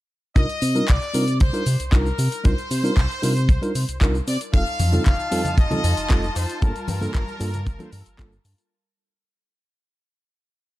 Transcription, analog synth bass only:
0.36 C2
0.62 C3
0.90 C2
1.14 C3
1.41 C2
1.66 C3
1.80 C2
1.92 C2
2.19 C3
2.45 C2
2.71 C3
2.97 C2
3.23 C3
3.49 C2
3.75 C3
3.89 C2
4.01 C2
4.27 C3
4.54 F1
4.80 F2
5.07 F1
5.32 F2
5.58 F1
5.84 F2
5.97 F1
6.11 F1
6.36 F2
6.62 G1
6.88 G2
7.15 G1
7.40 G2
7.67 G1
7.93 G2
8.06 G1
8.19 G1
8.45 G2

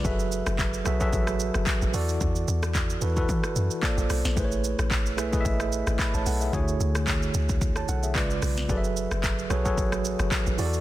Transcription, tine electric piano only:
0.04 F#3 F#4 G#4 A4 B4 E5
0.85 F#3 F#4 G#4 A4 B4 E5
1.00 F#3 F#4 G#4 A4 B4 E5
1.93 E3 E4 F#4 A4 D5
3.01 E3 E4 F#4 A4 B4
3.15 E3 E4 F#4 A4 B4
3.82 A#3 F4 A4 C5 D5
4.36 A3 E4 G#4 B4 C5
4.44 C#5
5.17 A3 E4 G#4 B4 E5
5.32 A3 E4 G#4 B4 D#5
5.41 E5
5.99 B5
6.14 C#5 A5
6.26 A4 F#5
6.41 G#4 E5
6.52 D3 A3 E4 F#4 G#4 C#5
7.77 C#5 A5
7.89 A4 F#5
8.03 G#4 E5
8.14 C#3 G#3 F4 B4 D5
8.68 F#3 F#4 G#4 A4 B4 D5
8.77 E5
9.49 F#3 F#4 G#4 A4 B4 C#5
9.64 F#3 F#4 G#4 A4 B4 C#5
10.57 E3 E4 F#4 G#4 D5
10.66 A4

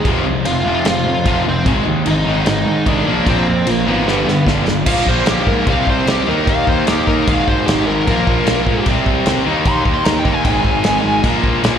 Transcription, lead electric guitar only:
0.46 F4 F5
0.87 F4 F5
1.49 C4 C5
2.08 D#4 D#5
2.48 D#4 D#5
2.87 D4 D5
3.29 C4 C5
3.70 A#3 A#4
3.87 B3 B4
4.87 F5
5.09 C5
5.28 G4
5.48 A#4
5.70 F5
5.90 C5
6.11 G4
6.29 A#4
6.50 F5
6.68 C5
6.89 G4
7.08 A#4
7.28 F5
7.48 C5
7.67 G4
7.88 A#4
8.08 A#4
9.68 C6
9.94 C6
10.05 A#5
10.19 G5
10.33 G#5
10.45 G#5

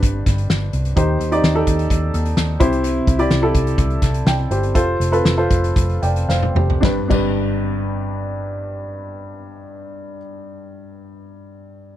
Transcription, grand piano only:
Already playing: G2 D4 G4 B4 C5
0.96 D#3 D#4 G4 C5
1.32 D#4 G4 D5
1.55 D#4 G4 A4
2.60 C3 E4 G4 C5
3.19 E4 G4 D5
3.42 E4 G4 A4
4.27 D5 G5
4.51 G4 C5
4.75 F4 A4 C5
5.12 F4 A4 B4
5.37 F4 A4 C5
6.02 D5 G5
6.29 C5 F5
6.56 G4 C5
6.81 G2 D4 G4 B4
7.08 G2 D4 G4 B4

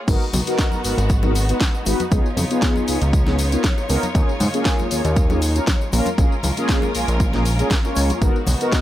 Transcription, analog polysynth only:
0.07 B3 D#4 F#4 A#4
0.46 B3 D#4 F#4 A#4
0.83 B3 D#4 F#4 A#4
1.22 B3 D#4 F#4 A#4
1.48 B3 D#4 F#4 B4
1.86 B3 D#4 F#4 B4
2.11 B3 D#4 F4 G#4
2.50 B3 D#4 F4 G#4
2.87 B3 D#4 F4 G#4
3.26 B3 D#4 F4 G#4
3.52 B3 D#4 F4 A#4
3.88 B3 D#4 F4 A#4
4.14 A#3 C#4 F4 G#4
4.53 A#3 C#4 F4 G#4
4.90 A#3 C#4 F4 G#4
5.29 A#3 C#4 F4 G#4
5.55 A#3 C#4 F4 A#4
5.92 A#3 C#4 F4 A#4
6.18 A#3 C#4 F4 G#4
6.57 A#3 C#4 F4 G#4
6.94 A#3 C#4 F4 G#4
7.33 A#3 C#4 F4 G#4
7.58 A#3 C#4 F4 G#4
7.84 A#3 C#4 F4 C#5
8.21 B3 D#4 F#4 A#4
8.60 B3 D#4 F#4 A#4

